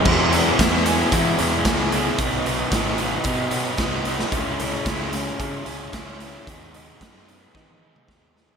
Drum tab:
CC |x---------------|----------------|----------------|----------------|
HH |--x-x-x-x-x-x-x-|x-x-x-x-x-x-x-x-|x-x-x-x-x-x-x-x-|x-x-x-x---------|
SD |----o-------o---|----o-------o--o|----o-------o-o-|----o---o---o-o-|
T1 |----------------|----------------|----------------|---------o------|
T2 |----------------|----------------|----------------|-----------o----|
FT |----------------|----------------|----------------|---------------o|
BD |o---o---o---o---|o---o---o---o---|o---o---o---o---|o---o---o---o---|